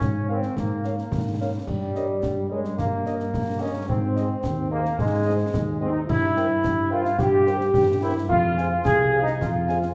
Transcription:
Already playing: euphonium C#4, trombone section C#4
0.01 tuba G#2, concert bass drum, snare
0.28 euphonium C4, trombone section C4, french horn section A#4 C#5, cornet F5
0.43 snare
0.56 tuba G#2, euphonium A#3, trombone section A#3, concert bass drum, snare
0.84 french horn section A#4 C#5, cornet F5, snare
0.98 snare
1.12 tuba G#2, concert bass drum, snare
1.40 french horn section A#4 C#5, cornet F5
1.67 tuba G2, euphonium G3, trombone section G3, concert bass drum, crash
1.95 french horn section A#4 C#5, cornet D#5, snare
2.23 tuba G2, concert bass drum, snare
2.50 trombone section G#3, euphonium G#3, french horn section A#4 C#5, cornet D#5
2.65 snare
2.77 tuba G2, euphonium A#3, trombone section A#3, concert bass drum, snare
3.05 french horn section A#4 C#5, cornet D#5, snare
3.20 snare
3.34 tuba G2, concert bass drum, snare
3.60 trombone section C#4, euphonium C#4, french horn section A#4 C#5, cornet D#5
3.88 tuba G#2, trombone section C4, euphonium C4, concert bass drum
4.15 french horn section G#4 C5, cornet D#5, snare
4.44 tuba D#2, concert bass drum, snare
4.71 trombone section A#3, euphonium A#3, french horn section G#4 C5, cornet D#5
4.85 snare
4.98 tuba G#2, euphonium G#3, trombone section G#3, concert bass drum, snare
5.25 french horn section G#4 C5, cornet D#5
5.54 tuba D#2, concert bass drum, snare
5.80 euphonium C4, trombone section C4, french horn section G#4 C5, cornet D#5
5.89 euphonium D#4, trombone section D#4
6.07 tuba G2, euphonium E4, trombone section E4, concert bass drum, crash
6.36 french horn section A#4 C5, cornet G5, snare
6.63 tuba G2, concert bass drum, snare
6.90 trombone section F4, euphonium F4, french horn section A#4 C5, cornet G5
7.05 snare
7.19 tuba G2, trombone section G4, euphonium G4, concert bass drum, snare
7.46 french horn section A#4 C5, cornet G5, snare
7.61 snare
7.74 tuba G2, concert bass drum, snare
8.02 euphonium E4, trombone section E4, french horn section A#4 C5, cornet G5
8.29 tuba F2, trombone section F4, euphonium F4, concert bass drum
8.57 french horn section G#4 C5 F5, cornet G#5, snare
8.85 tuba C2, trombone section G#4, euphonium G#4, concert bass drum, snare
9.13 french horn section G#4 C5 F5, cornet G#5
9.22 euphonium D#4, trombone section D#4
9.27 snare
9.40 tuba F2, trombone section F4, euphonium F4, concert bass drum, snare
9.68 french horn section G#4 C5 F5, cornet G#5, snare
9.82 snare

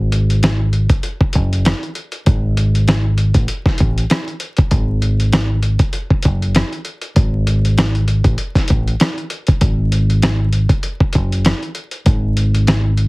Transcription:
Already playing: fingered electric bass G#1
0.12 closed hi-hat
0.30 closed hi-hat
0.43 cross-stick, snare, closed hi-hat
0.73 closed hi-hat
0.89 kick, closed hi-hat
1.03 closed hi-hat
1.21 kick
1.33 fingered electric bass F#1, kick, closed hi-hat
1.53 closed hi-hat
1.65 cross-stick, snare, closed hi-hat
1.83 closed hi-hat
1.95 closed hi-hat
2.12 closed hi-hat
2.26 fingered electric bass G#1, kick, closed hi-hat
2.57 closed hi-hat
2.75 closed hi-hat
2.88 cross-stick, snare, closed hi-hat
3.18 closed hi-hat
3.34 fingered electric bass A1, kick, closed hi-hat
3.48 closed hi-hat
3.66 muted fingered electric bass stroke, kick, snare
3.78 fingered electric bass A1, kick, closed hi-hat
3.98 closed hi-hat
4.10 cross-stick, snare, closed hi-hat
4.28 closed hi-hat
4.40 closed hi-hat
4.57 kick, closed hi-hat
4.71 fingered electric bass G#1, kick, closed hi-hat
5.02 closed hi-hat
5.20 closed hi-hat
5.32 cross-stick, snare, closed hi-hat
5.62 closed hi-hat
5.79 kick, closed hi-hat
5.93 closed hi-hat
6.10 kick
6.22 fingered electric bass F#1, kick, closed hi-hat
6.42 closed hi-hat
6.55 cross-stick, snare, closed hi-hat
6.73 closed hi-hat
6.85 closed hi-hat
7.02 closed hi-hat
7.16 fingered electric bass G#1, kick, closed hi-hat
7.47 closed hi-hat
7.65 closed hi-hat
7.78 cross-stick, snare, closed hi-hat
7.95 closed hi-hat
8.08 closed hi-hat
8.24 fingered electric bass A1, kick, closed hi-hat
8.38 closed hi-hat
8.55 muted fingered electric bass stroke, kick, snare, closed hi-hat
8.68 fingered electric bass A1, kick, closed hi-hat
8.88 closed hi-hat
9.00 cross-stick, snare, closed hi-hat
9.18 closed hi-hat
9.30 closed hi-hat
9.47 kick, closed hi-hat
9.61 fingered electric bass G#1, kick, closed hi-hat
9.92 closed hi-hat
10.10 closed hi-hat
10.22 cross-stick, snare, closed hi-hat
10.53 closed hi-hat
10.69 kick, closed hi-hat
10.83 closed hi-hat
11.00 kick
11.13 fingered electric bass F#1, kick, closed hi-hat
11.32 closed hi-hat
11.45 cross-stick, snare, closed hi-hat
11.63 closed hi-hat
11.75 closed hi-hat
11.91 closed hi-hat
12.06 fingered electric bass G#1, kick, closed hi-hat
12.37 closed hi-hat
12.55 closed hi-hat
12.67 cross-stick, snare, closed hi-hat
12.97 closed hi-hat

